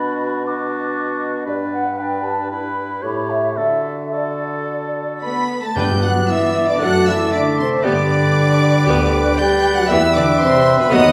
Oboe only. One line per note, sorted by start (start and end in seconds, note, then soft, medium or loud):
0.00 0.45 F#4 medium
0.45 1.45 F#4 medium
1.46 1.95 B4 medium
1.98 2.50 B4 medium
2.50 3.04 B4 soft
3.03 3.59 C#5 soft
3.57 3.95 A4 soft
4.12 5.46 A4 soft
5.76 7.80 D5 medium
7.82 11.12 B4 medium